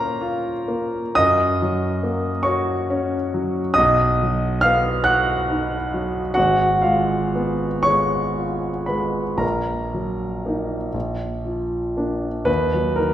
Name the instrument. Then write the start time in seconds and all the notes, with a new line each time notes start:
grand piano
Already playing: A#2 A#3 C#4 A#4 C5 C#5 A#5 C6 C#6
0.21 F4
0.68 A#3
1.15 F#2 D#5 D#6
1.62 F#3
2.03 A#3
2.43 F#4 C#5 C#6
2.90 C#4
3.34 F#3
3.74 B1 D#5 D#6
4.23 F#3
4.61 B3 F5 F6
5.04 F#4 F#5 F#6
5.50 D#4
5.94 F#3
6.34 G#1 F#4 F#5
6.82 G#3 F4 F5
7.35 B3
7.83 G#3 C#5 C#6
8.37 F4
8.86 G#3 B4 B5
9.37 A#1 A#4 A#5
9.94 F#3
10.46 A#3 D#4
10.94 A#1
11.45 F3
11.97 A#3 D4
12.45 D#2 B4
12.74 F#3
12.96 D#3 A#4